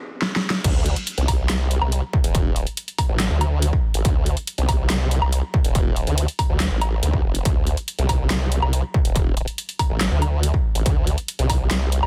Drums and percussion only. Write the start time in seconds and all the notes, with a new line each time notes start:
0.22 snare
0.36 snare
0.50 snare
0.64 kick, closed hi-hat, crash
0.86 closed hi-hat
0.96 closed hi-hat
1.07 closed hi-hat
1.18 closed hi-hat
1.28 kick, open hi-hat, low woodblock
1.50 snare, clap, closed hi-hat
1.71 closed hi-hat
1.82 low woodblock
1.92 closed hi-hat
2.13 kick
2.24 closed hi-hat
2.35 kick, closed hi-hat
2.56 closed hi-hat
2.67 closed hi-hat
2.77 closed hi-hat
2.88 closed hi-hat
2.98 kick, open hi-hat, low woodblock
3.20 snare, clap, closed hi-hat
3.41 closed hi-hat, low woodblock
3.62 closed hi-hat
3.73 kick
3.94 closed hi-hat
4.05 kick, closed hi-hat
4.26 closed hi-hat
4.37 closed hi-hat
4.47 closed hi-hat
4.58 closed hi-hat
4.69 kick, open hi-hat, low woodblock
4.90 snare, clap, closed hi-hat
5.11 closed hi-hat
5.22 low woodblock
5.32 closed hi-hat
5.54 kick
5.64 closed hi-hat
5.75 kick, closed hi-hat
5.96 closed hi-hat
6.07 closed hi-hat
6.18 closed hi-hat
6.28 closed hi-hat
6.39 kick, open hi-hat, low woodblock
6.60 snare, clap, closed hi-hat
6.81 closed hi-hat, low woodblock
7.03 closed hi-hat
7.13 kick
7.35 closed hi-hat
7.45 kick, closed hi-hat
7.67 closed hi-hat
7.77 closed hi-hat
7.88 closed hi-hat
7.99 closed hi-hat
8.09 kick, open hi-hat, low woodblock
8.30 snare, clap, closed hi-hat
8.52 closed hi-hat
8.62 low woodblock
8.73 closed hi-hat
8.94 kick
9.05 closed hi-hat
9.16 kick, closed hi-hat
9.37 closed hi-hat
9.48 closed hi-hat
9.58 closed hi-hat
9.69 closed hi-hat
9.79 kick, open hi-hat, low woodblock
10.01 snare, clap, closed hi-hat
10.22 closed hi-hat, low woodblock
10.43 closed hi-hat
10.54 kick
10.75 closed hi-hat
10.86 kick, closed hi-hat
11.07 closed hi-hat
11.18 closed hi-hat
11.28 closed hi-hat
11.39 closed hi-hat
11.50 kick, open hi-hat, low woodblock
11.71 snare, clap, closed hi-hat
11.92 closed hi-hat
12.03 low woodblock